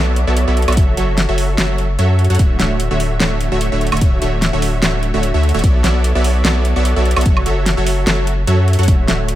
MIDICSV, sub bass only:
0, 0, Header, 1, 2, 480
1, 0, Start_track
1, 0, Tempo, 405405
1, 914, Time_signature, 4, 2, 24, 8
1, 11074, End_track
2, 0, Start_track
2, 0, Title_t, "Sub bass"
2, 0, Program_c, 0, 38
2, 0, Note_on_c, 0, 35, 100
2, 297, Note_off_c, 0, 35, 0
2, 322, Note_on_c, 0, 35, 98
2, 537, Note_off_c, 0, 35, 0
2, 562, Note_on_c, 0, 35, 101
2, 777, Note_off_c, 0, 35, 0
2, 802, Note_on_c, 0, 35, 99
2, 913, Note_on_c, 0, 30, 96
2, 931, Note_off_c, 0, 35, 0
2, 1131, Note_off_c, 0, 30, 0
2, 1152, Note_on_c, 0, 30, 101
2, 1497, Note_off_c, 0, 30, 0
2, 1523, Note_on_c, 0, 30, 97
2, 1851, Note_off_c, 0, 30, 0
2, 1872, Note_on_c, 0, 30, 98
2, 2331, Note_off_c, 0, 30, 0
2, 2351, Note_on_c, 0, 42, 101
2, 2697, Note_off_c, 0, 42, 0
2, 2722, Note_on_c, 0, 42, 98
2, 2811, Note_off_c, 0, 42, 0
2, 2833, Note_on_c, 0, 26, 98
2, 3051, Note_off_c, 0, 26, 0
2, 3072, Note_on_c, 0, 26, 100
2, 3417, Note_off_c, 0, 26, 0
2, 3442, Note_on_c, 0, 26, 97
2, 3771, Note_off_c, 0, 26, 0
2, 3791, Note_on_c, 0, 26, 99
2, 4137, Note_off_c, 0, 26, 0
2, 4162, Note_on_c, 0, 26, 101
2, 4377, Note_off_c, 0, 26, 0
2, 4403, Note_on_c, 0, 26, 102
2, 4617, Note_off_c, 0, 26, 0
2, 4643, Note_on_c, 0, 26, 99
2, 4731, Note_off_c, 0, 26, 0
2, 4753, Note_on_c, 0, 26, 98
2, 4972, Note_off_c, 0, 26, 0
2, 4992, Note_on_c, 0, 26, 97
2, 5337, Note_off_c, 0, 26, 0
2, 5363, Note_on_c, 0, 26, 96
2, 5691, Note_off_c, 0, 26, 0
2, 5712, Note_on_c, 0, 26, 99
2, 6057, Note_off_c, 0, 26, 0
2, 6083, Note_on_c, 0, 26, 97
2, 6298, Note_off_c, 0, 26, 0
2, 6323, Note_on_c, 0, 38, 99
2, 6537, Note_off_c, 0, 38, 0
2, 6563, Note_on_c, 0, 26, 98
2, 6651, Note_off_c, 0, 26, 0
2, 6673, Note_on_c, 0, 35, 96
2, 6892, Note_off_c, 0, 35, 0
2, 6913, Note_on_c, 0, 35, 102
2, 7258, Note_off_c, 0, 35, 0
2, 7283, Note_on_c, 0, 35, 95
2, 7611, Note_off_c, 0, 35, 0
2, 7633, Note_on_c, 0, 35, 97
2, 7978, Note_off_c, 0, 35, 0
2, 8004, Note_on_c, 0, 35, 97
2, 8218, Note_off_c, 0, 35, 0
2, 8243, Note_on_c, 0, 35, 100
2, 8458, Note_off_c, 0, 35, 0
2, 8483, Note_on_c, 0, 35, 102
2, 8571, Note_off_c, 0, 35, 0
2, 8592, Note_on_c, 0, 30, 94
2, 8811, Note_off_c, 0, 30, 0
2, 8831, Note_on_c, 0, 30, 99
2, 9177, Note_off_c, 0, 30, 0
2, 9202, Note_on_c, 0, 30, 94
2, 9531, Note_off_c, 0, 30, 0
2, 9551, Note_on_c, 0, 30, 99
2, 10011, Note_off_c, 0, 30, 0
2, 10031, Note_on_c, 0, 42, 94
2, 10377, Note_off_c, 0, 42, 0
2, 10401, Note_on_c, 0, 42, 96
2, 10514, Note_on_c, 0, 26, 98
2, 10531, Note_off_c, 0, 42, 0
2, 10732, Note_off_c, 0, 26, 0
2, 10752, Note_on_c, 0, 26, 98
2, 11074, Note_off_c, 0, 26, 0
2, 11074, End_track
0, 0, End_of_file